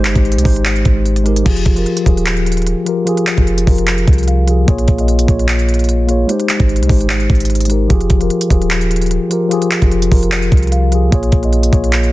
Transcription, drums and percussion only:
0.05 clap, closed hi-hat
0.15 kick, closed hi-hat
0.25 closed hi-hat
0.32 closed hi-hat
0.38 closed hi-hat
0.45 kick, open hi-hat
0.56 closed hi-hat
0.65 clap, closed hi-hat
0.76 closed hi-hat
0.85 kick, closed hi-hat
1.06 closed hi-hat
1.16 closed hi-hat
1.26 closed hi-hat
1.36 closed hi-hat
1.46 kick, closed hi-hat, crash
1.56 closed hi-hat
1.66 kick, closed hi-hat
1.76 closed hi-hat
1.86 closed hi-hat
1.97 closed hi-hat
2.06 kick, closed hi-hat
2.17 closed hi-hat
2.26 clap, closed hi-hat
2.37 closed hi-hat
2.46 closed hi-hat
2.52 closed hi-hat
2.57 closed hi-hat
2.62 closed hi-hat
2.67 closed hi-hat
2.86 closed hi-hat
3.07 closed hi-hat
3.17 closed hi-hat
3.26 clap, closed hi-hat
3.37 kick, closed hi-hat
3.47 closed hi-hat
3.58 closed hi-hat
3.67 kick, open hi-hat
3.78 closed hi-hat
3.87 clap, closed hi-hat
3.98 closed hi-hat
4.08 kick, closed hi-hat
4.13 closed hi-hat
4.18 closed hi-hat
4.23 closed hi-hat
4.28 closed hi-hat
4.48 closed hi-hat
4.68 kick, closed hi-hat
4.78 closed hi-hat
4.88 kick, closed hi-hat
4.98 closed hi-hat
5.08 closed hi-hat
5.19 closed hi-hat
5.28 kick, closed hi-hat
5.39 closed hi-hat
5.48 clap, closed hi-hat
5.59 closed hi-hat
5.69 closed hi-hat
5.74 closed hi-hat
5.79 closed hi-hat
5.84 closed hi-hat
5.89 closed hi-hat
6.09 closed hi-hat
6.29 closed hi-hat
6.40 closed hi-hat
6.49 clap, closed hi-hat
6.60 kick, closed hi-hat
6.69 closed hi-hat
6.76 closed hi-hat
6.83 closed hi-hat
6.89 kick, open hi-hat
7.01 closed hi-hat
7.09 clap, closed hi-hat
7.20 closed hi-hat
7.30 kick, closed hi-hat
7.35 closed hi-hat
7.40 closed hi-hat
7.45 closed hi-hat
7.50 closed hi-hat
7.55 closed hi-hat
7.61 closed hi-hat
7.65 closed hi-hat
7.70 closed hi-hat
7.90 kick, closed hi-hat
8.01 closed hi-hat
8.10 kick, closed hi-hat
8.21 closed hi-hat
8.30 closed hi-hat
8.41 closed hi-hat
8.50 kick, closed hi-hat
8.62 closed hi-hat
8.70 clap, closed hi-hat
8.81 closed hi-hat
8.91 closed hi-hat
8.96 closed hi-hat
9.02 closed hi-hat
9.06 closed hi-hat
9.11 closed hi-hat
9.31 closed hi-hat
9.51 closed hi-hat
9.62 closed hi-hat
9.71 clap, closed hi-hat
9.82 kick, closed hi-hat
9.91 closed hi-hat
10.02 closed hi-hat
10.12 kick, open hi-hat
10.23 closed hi-hat
10.31 clap, closed hi-hat
10.42 closed hi-hat
10.52 kick, closed hi-hat
10.57 closed hi-hat
10.63 closed hi-hat
10.67 closed hi-hat
10.72 closed hi-hat
10.92 closed hi-hat
11.12 kick, closed hi-hat
11.23 closed hi-hat
11.32 kick, closed hi-hat
11.43 closed hi-hat
11.53 closed hi-hat
11.63 closed hi-hat
11.73 kick, closed hi-hat
11.84 closed hi-hat
11.92 clap, closed hi-hat
12.03 closed hi-hat

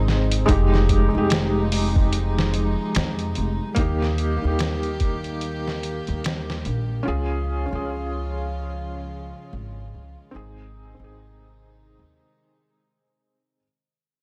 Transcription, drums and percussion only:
0.08 snare
0.31 closed hi-hat
0.48 kick, closed hi-hat
0.74 snare
0.89 kick, closed hi-hat
1.30 snare, closed hi-hat
1.72 open hi-hat
1.96 kick
2.13 closed hi-hat
2.39 snare
2.54 closed hi-hat
2.95 snare, closed hi-hat
3.19 closed hi-hat
3.35 closed hi-hat
3.76 kick, closed hi-hat
4.02 snare
4.18 closed hi-hat
4.59 snare, closed hi-hat
4.83 closed hi-hat
5.00 kick, closed hi-hat
5.24 closed hi-hat
5.41 closed hi-hat
5.67 snare
5.83 closed hi-hat
6.07 closed hi-hat
6.24 snare, closed hi-hat
6.50 snare
6.65 closed hi-hat

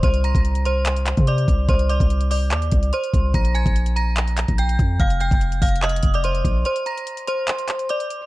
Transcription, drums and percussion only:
0.03 kick, closed hi-hat
0.14 closed hi-hat
0.24 closed hi-hat
0.35 kick, closed hi-hat
0.45 closed hi-hat
0.55 closed hi-hat
0.65 closed hi-hat
0.85 clap, closed hi-hat
0.96 closed hi-hat
1.06 clap, closed hi-hat
1.17 kick, closed hi-hat
1.27 closed hi-hat
1.38 closed hi-hat
1.48 kick, closed hi-hat
1.69 kick, closed hi-hat
1.79 closed hi-hat
1.90 closed hi-hat
2.00 kick, closed hi-hat
2.10 closed hi-hat
2.21 closed hi-hat
2.31 open hi-hat
2.51 clap, closed hi-hat
2.62 closed hi-hat
2.71 kick, closed hi-hat
2.83 closed hi-hat
2.93 closed hi-hat
3.04 closed hi-hat
3.14 kick, closed hi-hat
3.34 kick, closed hi-hat
3.45 closed hi-hat
3.55 closed hi-hat
3.66 kick, closed hi-hat
3.76 closed hi-hat
3.86 closed hi-hat
3.96 closed hi-hat
4.16 clap, closed hi-hat
4.28 closed hi-hat
4.37 clap, closed hi-hat
4.48 kick, closed hi-hat
4.58 closed hi-hat
4.69 closed hi-hat
4.79 kick, closed hi-hat
5.00 kick, closed hi-hat
5.10 closed hi-hat
5.21 closed hi-hat
5.31 kick, closed hi-hat
5.41 closed hi-hat
5.52 closed hi-hat
5.62 kick, closed hi-hat, open hi-hat
5.69 closed hi-hat
5.76 closed hi-hat
5.82 clap, closed hi-hat
5.89 closed hi-hat
5.96 closed hi-hat
6.03 kick, closed hi-hat
6.14 closed hi-hat
6.24 closed hi-hat
6.35 closed hi-hat
6.45 kick, closed hi-hat
6.65 closed hi-hat
6.76 closed hi-hat
6.86 closed hi-hat
6.98 closed hi-hat
7.07 closed hi-hat
7.17 closed hi-hat
7.27 closed hi-hat
7.47 clap, closed hi-hat
7.59 closed hi-hat
7.68 clap, closed hi-hat
7.79 closed hi-hat
7.89 closed hi-hat
8.00 closed hi-hat
8.10 closed hi-hat

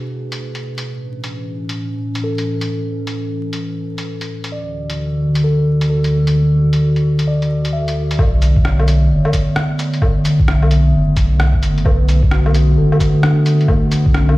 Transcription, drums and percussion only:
0.32 closed hi-hat
0.55 closed hi-hat
0.78 closed hi-hat
1.24 closed hi-hat
1.69 closed hi-hat
2.15 closed hi-hat
2.38 closed hi-hat
2.61 closed hi-hat
3.07 closed hi-hat
3.53 closed hi-hat
3.98 closed hi-hat
4.21 closed hi-hat
4.44 closed hi-hat
4.90 closed hi-hat
5.35 closed hi-hat
5.81 closed hi-hat
6.04 closed hi-hat
6.27 closed hi-hat
6.73 closed hi-hat
6.96 closed hi-hat
7.19 closed hi-hat
7.42 closed hi-hat
7.65 closed hi-hat
7.88 closed hi-hat
8.11 closed hi-hat
8.19 kick, low woodblock
8.42 closed hi-hat, cabasa
8.56 kick
8.65 cross-stick
8.79 low woodblock
8.88 closed hi-hat, cabasa
9.25 low woodblock
9.33 kick, closed hi-hat, cabasa
9.56 cross-stick
9.79 closed hi-hat, cabasa
9.94 closed hi-hat
10.02 kick, low woodblock
10.25 closed hi-hat, cabasa
10.39 kick
10.48 cross-stick
10.62 low woodblock
10.71 closed hi-hat, cabasa
11.16 kick, closed hi-hat, cabasa
11.40 cross-stick
11.54 kick
11.63 closed hi-hat, cabasa
11.78 closed hi-hat
11.85 kick, low woodblock
12.09 closed hi-hat, cabasa
12.23 kick
12.31 cross-stick
12.46 low woodblock
12.54 closed hi-hat, cabasa
12.92 low woodblock
13.00 kick, closed hi-hat, cabasa
13.23 cross-stick
13.46 closed hi-hat, cabasa
13.61 closed hi-hat
13.68 kick, low woodblock
13.92 closed hi-hat, cabasa
14.06 kick
14.14 cross-stick
14.29 low woodblock

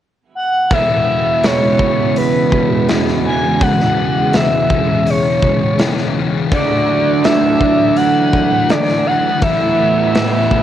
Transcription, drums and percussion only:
0.71 kick, open hi-hat
1.44 snare, open hi-hat
1.79 kick
2.16 open hi-hat
2.52 kick
2.89 snare, open hi-hat
3.08 snare
3.61 kick, open hi-hat
3.80 snare
4.33 snare, open hi-hat
4.70 kick
5.07 open hi-hat
5.43 kick
5.79 snare, open hi-hat
5.98 snare
6.52 kick, open hi-hat
7.24 snare, open hi-hat
7.61 kick
7.97 open hi-hat
8.33 kick
8.70 snare, open hi-hat
8.88 snare
9.42 kick, open hi-hat
10.15 snare, open hi-hat
10.51 kick

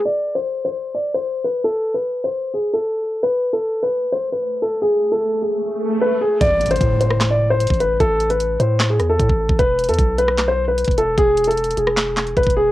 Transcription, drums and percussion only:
6.41 kick, closed hi-hat
6.61 closed hi-hat
6.66 closed hi-hat
6.71 closed hi-hat
6.76 closed hi-hat
6.81 kick, closed hi-hat
7.01 closed hi-hat
7.11 cross-stick
7.21 snare, clap, closed hi-hat
7.60 closed hi-hat
7.67 kick, closed hi-hat
7.74 closed hi-hat
7.80 closed hi-hat
8.00 kick, closed hi-hat
8.20 closed hi-hat
8.30 closed hi-hat
8.40 closed hi-hat
8.60 closed hi-hat
8.79 snare, clap, closed hi-hat
8.99 cross-stick, closed hi-hat
9.19 kick, closed hi-hat
9.29 kick
9.49 kick
9.59 kick, closed hi-hat
9.79 closed hi-hat
9.84 closed hi-hat
9.89 closed hi-hat
9.94 closed hi-hat
9.99 kick, closed hi-hat
10.19 closed hi-hat
10.28 cross-stick
10.38 snare, clap, closed hi-hat
10.78 closed hi-hat
10.85 kick, closed hi-hat
10.91 closed hi-hat
10.98 closed hi-hat
11.18 kick, closed hi-hat
11.37 closed hi-hat, open hi-hat
11.44 closed hi-hat
11.51 closed hi-hat
11.58 closed hi-hat
11.64 closed hi-hat
11.71 closed hi-hat
11.78 closed hi-hat
11.87 cross-stick
11.97 snare, clap, closed hi-hat
12.17 snare, clap, closed hi-hat
12.27 closed hi-hat
12.37 kick, closed hi-hat
12.44 kick, closed hi-hat
12.50 closed hi-hat

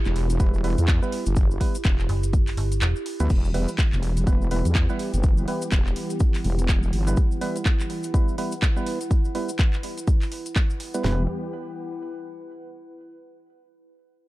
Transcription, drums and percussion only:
0.05 clap, cabasa
0.16 open hi-hat
0.30 closed hi-hat, cabasa
0.40 kick, closed hi-hat, cabasa
0.54 cabasa
0.64 open hi-hat
0.78 closed hi-hat, cabasa
0.88 kick, clap, closed hi-hat, cabasa
1.03 cabasa
1.12 open hi-hat
1.26 closed hi-hat, cabasa
1.36 kick, closed hi-hat, cabasa
1.51 cabasa
1.61 kick, open hi-hat
1.75 closed hi-hat, cabasa
1.84 kick, clap, closed hi-hat, cabasa
1.99 clap, cabasa
2.09 open hi-hat
2.23 closed hi-hat, cabasa
2.33 kick, closed hi-hat, cabasa
2.47 clap, open hi-hat, cabasa
2.57 open hi-hat
2.72 closed hi-hat, cabasa
2.81 clap, closed hi-hat, cabasa
2.96 cabasa
3.06 open hi-hat
3.20 closed hi-hat, cabasa
3.30 kick, closed hi-hat, crash, cabasa
3.45 cabasa
3.54 open hi-hat
3.68 closed hi-hat, cabasa
3.78 kick, clap, closed hi-hat, cabasa
3.93 clap, cabasa
4.03 open hi-hat
4.17 closed hi-hat, cabasa
4.27 kick, closed hi-hat, cabasa
4.42 cabasa
4.51 open hi-hat
4.65 closed hi-hat, cabasa
4.75 kick, clap, closed hi-hat, cabasa
4.89 cabasa
4.99 open hi-hat
5.14 closed hi-hat, cabasa
5.23 kick, closed hi-hat, cabasa
5.37 cabasa
5.48 open hi-hat
5.62 closed hi-hat, cabasa
5.72 kick, clap, closed hi-hat, cabasa
5.86 clap, cabasa
5.96 open hi-hat
6.10 closed hi-hat, cabasa
6.20 kick, closed hi-hat, cabasa
6.35 clap, open hi-hat, cabasa
6.44 open hi-hat
6.59 closed hi-hat, cabasa
6.69 kick, clap, closed hi-hat, cabasa
6.83 cabasa
6.93 open hi-hat
7.07 closed hi-hat, cabasa
7.17 kick, closed hi-hat, cabasa
7.32 cabasa
7.41 open hi-hat
7.56 closed hi-hat, cabasa
7.66 kick, clap, closed hi-hat, cabasa
7.80 clap, cabasa
7.90 open hi-hat
8.03 closed hi-hat, cabasa
8.14 kick, closed hi-hat, cabasa
8.28 cabasa
8.38 open hi-hat
8.52 closed hi-hat, cabasa
8.62 kick, clap, closed hi-hat, cabasa
8.77 cabasa
8.87 open hi-hat
9.01 closed hi-hat, cabasa
9.11 kick, closed hi-hat, cabasa
9.25 cabasa
9.35 open hi-hat
9.49 closed hi-hat, cabasa
9.59 kick, clap, closed hi-hat, cabasa
9.73 clap, cabasa
9.83 open hi-hat
9.98 closed hi-hat, cabasa
10.07 kick, closed hi-hat, cabasa
10.22 clap, open hi-hat, cabasa
10.32 open hi-hat
10.46 closed hi-hat, cabasa
10.56 kick, clap, closed hi-hat, cabasa
10.70 cabasa
10.80 open hi-hat
10.94 closed hi-hat, cabasa
11.04 snare, floor tom

